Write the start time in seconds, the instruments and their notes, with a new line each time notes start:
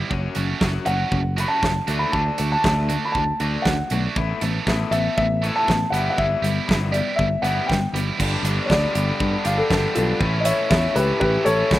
Already playing: distorted electric guitar G3 B3 E4 G4
0.10 fingered electric bass F#1, overdriven electric guitar F#3 C#4 F#4, kick
0.35 fingered electric bass F#1, overdriven electric guitar F#3 C#4, distorted electric guitar A3 F#4, closed hi-hat
0.61 fingered electric bass F#1, overdriven electric guitar F#3 C#4 F#4, kick, snare
0.86 fingered electric bass F#1, overdriven electric guitar F#3 C#4, distorted electric guitar A3 F#4, upright piano F#5, closed hi-hat
1.12 fingered electric bass F#1, overdriven electric guitar F#3 C#4, kick
1.37 overdriven electric guitar F#3 C#4 F#4, distorted electric guitar A3, upright piano B5, closed hi-hat
1.48 upright piano A5
1.63 fingered electric bass F#1, overdriven electric guitar F#3 C#4, kick, snare
1.87 fingered electric bass D2, overdriven electric guitar D3 A3 D4, distorted electric guitar F#4, closed hi-hat
1.99 upright piano B5
2.12 fingered electric bass D2, overdriven electric guitar D3 A3 D4, upright piano A5, kick
2.38 fingered electric bass D2, overdriven electric guitar D3 A3, distorted electric guitar D4 F#4, closed hi-hat
2.52 upright piano A5
2.64 fingered electric bass D2, overdriven electric guitar D3 A3 D4, kick, snare
2.89 overdriven electric guitar D3 A3, distorted electric guitar D4 F#4, closed hi-hat
3.05 upright piano B5
3.12 fingered electric bass D2, overdriven electric guitar D3, upright piano A5, kick
3.16 overdriven electric guitar A3
3.40 fingered electric bass D2, overdriven electric guitar D3 A3 D4, distorted electric guitar F#4, closed hi-hat
3.62 fingered electric bass D2, upright piano F#5, kick, snare
3.66 overdriven electric guitar D3 A3
3.90 fingered electric bass B1, overdriven electric guitar D3 A3, distorted electric guitar D4 F#4, closed hi-hat
4.16 fingered electric bass A1, overdriven electric guitar A3 B3 E4, kick
4.41 fingered electric bass A1, distorted electric guitar E3 A4, overdriven electric guitar A3 B3, closed hi-hat
4.67 fingered electric bass A1, overdriven electric guitar A3 B3 E4, kick, snare
4.91 fingered electric bass A1, distorted electric guitar E3 A4, overdriven electric guitar A3 B3, upright piano E5, closed hi-hat
5.17 fingered electric bass A1, overdriven electric guitar A3 B3, upright piano E5, kick
5.42 distorted electric guitar E3 A4, overdriven electric guitar A3 B3 E4, closed hi-hat
5.56 upright piano A5
5.68 fingered electric bass A1, overdriven electric guitar A3 B3, kick, snare
5.90 fingered electric bass G1, overdriven electric guitar G3 B3 E4, distorted electric guitar G4, upright piano F#5, closed hi-hat
6.10 upright piano F#5
6.18 fingered electric bass G1, overdriven electric guitar G3 B3 E4, upright piano E5, kick
6.42 fingered electric bass G1, overdriven electric guitar G3 B3, distorted electric guitar E4 G4, closed hi-hat
6.68 fingered electric bass G1, overdriven electric guitar G3 B3 E4, kick, snare
6.92 overdriven electric guitar G3 B3, distorted electric guitar E4 G4, upright piano D5, closed hi-hat
7.16 fingered electric bass G1, overdriven electric guitar G3 B3, upright piano E5, kick
7.42 fingered electric bass G1, overdriven electric guitar G3 B3 E4, distorted electric guitar G4, upright piano F#5, closed hi-hat
7.67 fingered electric bass G1, overdriven electric guitar G3 B3, upright piano G5, kick
7.72 snare
7.93 fingered electric bass G1, overdriven electric guitar G3 B3, distorted electric guitar E4 G4, closed hi-hat
8.19 fingered electric bass G1, overdriven electric guitar G2 D3 G3 B3 D4, distorted electric guitar G4, kick, crash
8.43 fingered electric bass G1, overdriven electric guitar G3 B3 D4, distorted electric guitar G4, closed hi-hat
8.66 overdriven electric guitar D3, upright piano C#5
8.70 fingered electric bass D2, overdriven electric guitar G3 B3 D4, distorted electric guitar G4, upright piano D5, kick, snare
8.95 fingered electric bass G1, distorted electric guitar G3 B3 D4 G4, closed hi-hat
9.20 fingered electric bass G2, kick
9.44 fingered electric bass G1, overdriven electric guitar G3 B3 D4, distorted electric guitar G4, upright piano F5, closed hi-hat
9.58 upright piano A4
9.70 fingered electric bass G1, overdriven electric guitar G2 D3 G3 B3 D4, distorted electric guitar G4, kick, snare
9.94 fingered electric bass B1, overdriven electric guitar G3 B3 D4, upright piano F4 A4, closed hi-hat
10.20 fingered electric bass A1, overdriven electric guitar A2 E3 A3 C#4 E4, kick
10.40 upright piano D#5
10.45 overdriven electric guitar A3 C#4 E4, upright piano C#5 E5, closed hi-hat
10.70 fingered electric bass E2, overdriven electric guitar E3 A3 C#4 E4, upright piano C#5 E5, kick, snare
10.95 fingered electric bass C#2, distorted electric guitar A3 C#4 E4, upright piano G4 B4, closed hi-hat
11.20 fingered electric bass A1, upright piano G4 B4, kick
11.44 fingered electric bass A1, overdriven electric guitar A3 C#4 E4, upright piano A4 C#5, closed hi-hat
11.70 fingered electric bass D2, overdriven electric guitar A2 E3 A3 C#4 E4, kick, snare